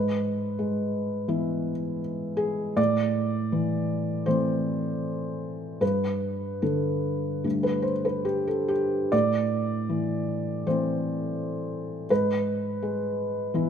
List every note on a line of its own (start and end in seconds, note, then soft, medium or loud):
0.00 2.74 G#2 medium
0.00 2.00 B4 medium
0.59 1.72 G#3 soft
1.28 2.73 E3 soft
1.28 2.73 B3 soft
1.28 2.74 E4 soft
2.37 2.77 G#4 medium
2.76 5.77 A2 soft
2.76 4.26 D5 medium
3.52 4.26 E3 soft
4.26 5.78 E3 soft
4.26 5.77 A3 soft
4.26 5.78 C4 soft
4.26 5.81 C5 medium
5.81 9.08 G2 soft
5.81 6.63 B4 medium
6.62 7.92 D3 soft
6.62 7.64 A4 medium
7.44 9.08 G3 soft
7.44 9.08 A3 soft
7.44 9.08 D4 soft
7.63 7.84 B4 medium
7.82 8.04 C5 medium
8.05 8.25 B4 medium
8.25 8.46 G4 medium
8.47 8.70 A4 medium
8.68 9.12 G4 medium
9.12 12.06 A2 soft
9.12 10.64 D5 medium
9.89 10.65 E3 soft
10.67 12.07 E3 soft
10.67 12.07 A3 soft
10.67 12.08 C4 soft
10.67 12.11 C5 medium
12.10 13.70 G#2 medium
12.10 13.70 B4 medium
12.82 13.70 G#3 soft
13.54 13.70 E3 soft
13.54 13.70 B3 soft
13.54 13.70 E4 soft